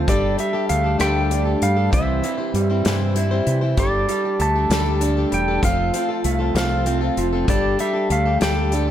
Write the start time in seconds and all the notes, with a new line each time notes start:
0.08 G1 G3 D4 G4 A4 D5, kick, closed hi-hat
0.38 G3 D4 G4 A4 E5, closed hi-hat
0.53 D4 G4 A4
0.69 D2 A3 F5, closed hi-hat
0.84 D4 G4 A4
0.99 D2 G3 D4 G4 A4 G5, cross-stick, closed hi-hat
1.30 G3 D4 G4 A4, closed hi-hat
1.45 D4 G4 A4
1.62 G2 G3 F5, closed hi-hat
1.76 D4 G4 A4
1.92 C2 C3 E3 G3 C4 E4 C5 E5, kick, closed hi-hat
2.22 E3 G3 C4 E4 C5, closed hi-hat
2.38 G3 C4 E4 C5
2.54 G2 G3, closed hi-hat
2.70 G3 C4 E4 C5
2.85 G2 C3 E3 G3 C4 E4 C5, snare, closed hi-hat
3.15 G3 C4 E4 C5, closed hi-hat
3.31 G3 C4 E4 C5
3.47 C3 E3, closed hi-hat
3.61 G3 C4 E4 C5
3.77 G1 G3 D4 G4 A4 D5, kick, closed hi-hat
4.08 G3 D4 G4 A4, closed hi-hat
4.24 D4 G4 A4
4.39 D2 A3 A5, closed hi-hat
4.56 D4 G4 A4
4.70 D2 G3 D4 G4 A4, snare, closed hi-hat
5.01 G3 D4 G4 A4, closed hi-hat
5.17 D4 G4 A4
5.32 E1 G3 G5, closed hi-hat
5.48 D4 G4 A4
5.62 F1 F2 F3 A3 C4 F4 A4 F5, kick, closed hi-hat
5.93 F3 A3 C4 F4 A4, closed hi-hat
6.09 C4 F4 A4
6.24 C2 A3, closed hi-hat
6.39 C4 F4 A4
6.54 C2 F3 A3 C4 F4 A4 F5, snare, closed hi-hat
6.85 A3 C4 F4 A4, closed hi-hat
7.01 C4 F4 A4
7.17 F1 F3, closed hi-hat
7.33 C4 F4 A4
7.48 G1 G3 D4 G4 A4 D5, kick, closed hi-hat
7.79 G3 D4 G4 A4 E5, closed hi-hat
7.93 D4 G4 A4
8.10 D2 A3 F5, closed hi-hat
8.26 D4 G4 A4
8.41 D2 G3 D4 G4 A4 G5, snare, closed hi-hat
8.72 G3 D4 G4 A4, closed hi-hat
8.87 A4